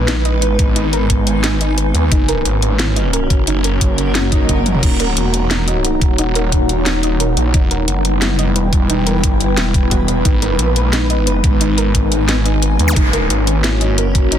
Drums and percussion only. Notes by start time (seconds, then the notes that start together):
0.08 snare, closed hi-hat
0.25 closed hi-hat
0.42 closed hi-hat
0.59 kick, closed hi-hat
0.76 closed hi-hat
0.93 closed hi-hat
1.10 kick, closed hi-hat
1.27 closed hi-hat
1.44 snare, closed hi-hat
1.61 closed hi-hat
1.78 closed hi-hat
1.95 closed hi-hat
2.12 kick, closed hi-hat
2.29 closed hi-hat
2.45 closed hi-hat
2.62 closed hi-hat
2.79 snare, closed hi-hat
2.96 closed hi-hat
3.13 closed hi-hat
3.30 kick, closed hi-hat
3.47 closed hi-hat
3.64 closed hi-hat
3.81 kick, closed hi-hat
3.98 closed hi-hat
4.15 snare, closed hi-hat
4.32 kick, closed hi-hat
4.49 kick, closed hi-hat
4.58 high tom
4.66 closed hi-hat, mid tom
4.74 mid tom
4.83 kick, closed hi-hat, crash
5.00 cross-stick, closed hi-hat
5.17 closed hi-hat
5.34 closed hi-hat
5.51 snare, closed hi-hat
5.68 closed hi-hat
5.85 closed hi-hat
6.01 kick, closed hi-hat
6.18 closed hi-hat
6.35 closed hi-hat
6.52 kick, closed hi-hat
6.69 closed hi-hat
6.86 snare, closed hi-hat
7.03 closed hi-hat
7.20 closed hi-hat
7.37 closed hi-hat
7.54 kick, closed hi-hat
7.71 closed hi-hat
7.88 closed hi-hat
8.05 closed hi-hat
8.22 snare, closed hi-hat
8.39 closed hi-hat
8.56 closed hi-hat
8.73 kick, closed hi-hat
8.90 closed hi-hat
9.07 closed hi-hat
9.23 kick, closed hi-hat
9.41 closed hi-hat
9.57 snare, closed hi-hat
9.74 kick, closed hi-hat
9.91 kick, cross-stick, closed hi-hat
10.08 cross-stick, closed hi-hat
10.25 kick, closed hi-hat
10.42 cross-stick, closed hi-hat
10.59 closed hi-hat
10.76 closed hi-hat
10.93 snare, closed hi-hat
11.10 closed hi-hat
11.27 closed hi-hat
11.44 kick, closed hi-hat
11.61 closed hi-hat
11.78 closed hi-hat
11.95 kick, closed hi-hat
12.12 closed hi-hat
12.29 snare, closed hi-hat
12.46 closed hi-hat
12.62 closed hi-hat
12.79 closed hi-hat
12.96 kick, closed hi-hat
13.13 closed hi-hat
13.30 closed hi-hat
13.47 closed hi-hat
13.64 snare, closed hi-hat
13.81 closed hi-hat
13.98 closed hi-hat
14.15 kick, closed hi-hat
14.32 closed hi-hat